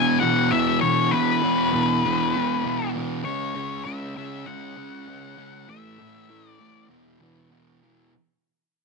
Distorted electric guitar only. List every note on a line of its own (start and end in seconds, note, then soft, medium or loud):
0.00 0.21 E2 loud
0.00 0.22 B2 loud
0.00 0.23 E3 loud
0.22 0.50 E2 medium
0.22 0.51 B2 loud
0.22 0.53 E3 loud
0.51 0.80 E2 medium
0.51 0.82 B2 medium
0.51 0.83 E3 loud
0.82 1.11 E2 loud
0.82 1.12 B2 loud
0.82 1.14 E3 loud
1.12 1.41 E2 medium
1.12 1.42 B2 medium
1.12 1.44 E3 loud
1.42 1.72 E2 loud
1.42 1.73 B2 loud
1.42 1.75 E3 loud
1.73 2.03 E2 medium
1.73 2.04 B2 loud
1.73 2.06 E3 loud
2.04 2.34 E2 medium
2.04 2.35 B2 loud
2.04 2.36 E3 medium
2.35 2.63 E2 loud
2.35 2.64 B2 loud
2.35 2.66 E3 loud
2.64 2.94 E2 medium
2.64 2.96 B2 loud
2.64 2.96 E3 medium
2.95 3.23 E2 loud
2.95 3.24 B2 loud
2.95 3.25 E3 loud
3.24 3.53 C#3 loud
3.24 3.54 G#3 loud
3.24 3.55 C#4 loud
3.54 3.84 C#3 medium
3.54 3.85 G#3 medium
3.54 3.86 C#4 loud
3.85 4.15 C#3 loud
3.85 4.16 G#3 loud
3.85 4.17 C#4 loud
4.16 4.45 C#3 medium
4.16 4.46 G#3 loud
4.16 4.47 C#4 loud
4.46 4.75 C#3 medium
4.46 4.76 G#3 medium
4.46 4.77 C#4 medium
4.76 5.06 C#3 loud
4.76 5.08 G#3 loud
4.76 5.08 C#4 loud
5.08 5.36 C#3 medium
5.08 5.37 G#3 medium
5.08 5.37 C#4 loud
5.37 5.66 C#3 medium
5.37 5.66 G#3 medium
5.37 5.66 C#4 medium
5.68 5.98 A2 loud
5.68 5.98 E3 loud
5.68 6.00 A3 loud
5.99 6.28 A2 medium
5.99 6.29 E3 medium
5.99 6.30 A3 loud
6.29 6.58 A2 medium
6.29 6.59 E3 loud
6.29 6.60 A3 loud
6.59 6.88 A2 medium
6.59 6.88 E3 loud
6.59 6.88 A3 loud
6.89 7.19 E2 loud
6.89 7.20 B2 loud
6.89 7.21 E3 medium
7.20 7.49 E2 loud
7.20 7.51 B2 loud
7.20 7.51 E3 loud
7.51 7.81 E2 medium
7.51 7.82 B2 medium
7.51 7.82 E3 medium
7.82 8.10 E2 medium
7.82 8.10 B2 loud
7.82 8.11 E3 medium